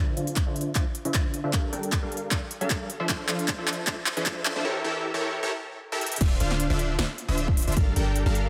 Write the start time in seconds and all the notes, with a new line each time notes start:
Already playing: D1 D3 D4 F4 C5 E5
0.17 D1 D3 D4 F4 C5 F5, closed hi-hat
0.27 closed hi-hat
0.36 kick, clap, closed hi-hat
0.47 D1 D3 D4 F4 C5 E5
0.56 closed hi-hat
0.61 closed hi-hat
0.75 D1 D3 D4 F4 C5 E5, kick, clap, closed hi-hat
0.95 closed hi-hat
1.05 D1 D3 D4 F4 C5 E5, closed hi-hat
1.14 kick, clap, closed hi-hat
1.34 closed hi-hat
1.44 D2 D3 D4 F4 C5 E5
1.53 G1 G3 D4, kick, clap, closed hi-hat
1.73 G1 G3 D4 A4 A#4 G5, closed hi-hat
1.83 closed hi-hat
1.92 kick, clap, closed hi-hat
2.02 G1 G3 D4 A4 A#4 F5
2.12 closed hi-hat
2.17 closed hi-hat
2.31 G1 G3 D4 A4 A#4 F5, kick, clap, closed hi-hat
2.51 closed hi-hat
2.61 G1 G3 D4 A4 A#4 F5, closed hi-hat
2.70 kick, clap, closed hi-hat
2.90 closed hi-hat
3.00 F1 F3 D4 A4 C5 E5
3.09 F1 F3 D4 A4 C5, kick, clap, closed hi-hat
3.28 F1 F3 D4 A4 C5 F5, clap, closed hi-hat
3.39 closed hi-hat
3.48 kick, clap, closed hi-hat
3.58 F1 F3 D4 A4 C5 E5
3.68 clap, closed hi-hat
3.73 closed hi-hat
3.87 F1 F3 D4 A4 C5 E5, kick, clap, closed hi-hat
4.06 clap, closed hi-hat
4.17 F1 F3 D4 A4 C5 E5, closed hi-hat
4.26 kick, clap, closed hi-hat
4.45 clap, closed hi-hat
4.56 F2 F3 D4 A4 C5 E5
4.65 E3 E4 G4 A4 A#4 C#5
4.84 E3 E4 G4 A4 A#4 E5
5.14 E3 E4 G4 A4 A#4 C#5
5.43 E3 E4 G4 A4 A#4 C#5
5.92 E3 E4 G4 A4 A#4 E5
6.01 closed hi-hat
6.06 closed hi-hat
6.12 closed hi-hat
6.16 closed hi-hat
6.21 D1 D3 D4 F4 C5 E5, kick, closed hi-hat, crash
6.40 D1 D3 D4 F4 C5 F5, closed hi-hat
6.51 snare
6.60 closed hi-hat
6.70 D1 D3 D4 F4 C5 E5
6.79 closed hi-hat
6.99 D1 D3 D4 F4 C5 E5, snare, closed hi-hat
7.18 closed hi-hat
7.28 D1 D3 D4 F4 C5 E5
7.38 closed hi-hat
7.48 kick
7.57 open hi-hat
7.62 closed hi-hat
7.67 D1 D3 D4 F4 C5 E5, closed hi-hat
7.72 closed hi-hat
7.77 G1 G3 A4 A#4 F5, kick, closed hi-hat
7.96 G1 G3 D4 A4 A#4 G5, closed hi-hat
8.16 closed hi-hat
8.26 G1 G3 D4 A4 A#4 F5
8.35 closed hi-hat